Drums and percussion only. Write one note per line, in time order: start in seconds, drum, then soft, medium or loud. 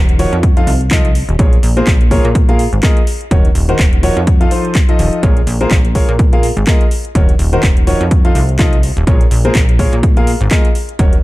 0.09 closed hi-hat soft
0.19 open hi-hat medium
0.33 closed hi-hat soft
0.43 kick loud
0.43 closed hi-hat medium
0.57 closed hi-hat soft
0.67 open hi-hat loud
0.81 closed hi-hat soft
0.91 kick loud
0.91 clap loud
0.91 closed hi-hat medium
1.05 closed hi-hat soft
1.15 open hi-hat loud
1.29 closed hi-hat soft
1.39 kick loud
1.39 closed hi-hat medium
1.53 closed hi-hat soft
1.63 open hi-hat loud
1.87 kick loud
1.87 clap loud
1.87 closed hi-hat medium
2.01 closed hi-hat soft
2.11 kick medium
2.11 open hi-hat medium
2.25 closed hi-hat soft
2.35 kick loud
2.35 closed hi-hat medium
2.49 closed hi-hat soft
2.59 open hi-hat loud
2.73 closed hi-hat soft
2.83 kick loud
2.83 clap loud
2.83 closed hi-hat medium
2.97 closed hi-hat soft
3.07 open hi-hat loud
3.21 closed hi-hat soft
3.31 kick loud
3.31 closed hi-hat medium
3.45 closed hi-hat soft
3.55 open hi-hat loud
3.69 closed hi-hat soft
3.79 kick loud
3.79 clap loud
3.79 closed hi-hat medium
3.93 closed hi-hat soft
4.03 open hi-hat medium
4.17 closed hi-hat soft
4.27 kick loud
4.27 closed hi-hat medium
4.41 closed hi-hat soft
4.51 open hi-hat loud
4.65 closed hi-hat soft
4.75 kick loud
4.75 clap loud
4.75 closed hi-hat medium
4.89 closed hi-hat soft
4.99 open hi-hat loud
5.13 closed hi-hat soft
5.23 kick loud
5.23 closed hi-hat medium
5.37 closed hi-hat soft
5.47 open hi-hat loud
5.61 closed hi-hat soft
5.71 kick loud
5.71 clap loud
5.71 closed hi-hat medium
5.85 closed hi-hat soft
5.95 kick medium
5.95 open hi-hat medium
6.19 kick loud
6.19 closed hi-hat medium
6.33 closed hi-hat soft
6.43 open hi-hat loud
6.57 closed hi-hat soft
6.67 kick loud
6.67 clap loud
6.67 closed hi-hat medium
6.81 closed hi-hat soft
6.91 open hi-hat medium
7.05 closed hi-hat soft
7.15 kick loud
7.15 closed hi-hat medium
7.29 closed hi-hat soft
7.39 open hi-hat loud
7.53 closed hi-hat soft
7.63 kick loud
7.63 clap loud
7.63 closed hi-hat medium
7.77 closed hi-hat soft
7.87 open hi-hat medium
8.01 closed hi-hat soft
8.11 kick loud
8.11 closed hi-hat medium
8.25 closed hi-hat soft
8.35 open hi-hat loud
8.49 closed hi-hat soft
8.59 kick loud
8.59 clap loud
8.59 closed hi-hat medium
8.73 closed hi-hat soft
8.83 open hi-hat medium
8.97 closed hi-hat soft
9.07 kick loud
9.07 closed hi-hat medium
9.21 closed hi-hat soft
9.31 open hi-hat loud
9.45 closed hi-hat soft
9.55 kick loud
9.55 clap loud
9.55 closed hi-hat medium
9.69 closed hi-hat soft
9.79 kick medium
9.79 open hi-hat medium
9.93 closed hi-hat soft
10.03 kick loud
10.03 closed hi-hat medium
10.17 closed hi-hat soft
10.27 open hi-hat loud
10.41 closed hi-hat soft
10.51 kick loud
10.51 clap loud
10.51 closed hi-hat medium
10.65 closed hi-hat soft
10.75 open hi-hat medium
10.89 closed hi-hat soft
10.99 kick loud
10.99 closed hi-hat loud
11.13 closed hi-hat soft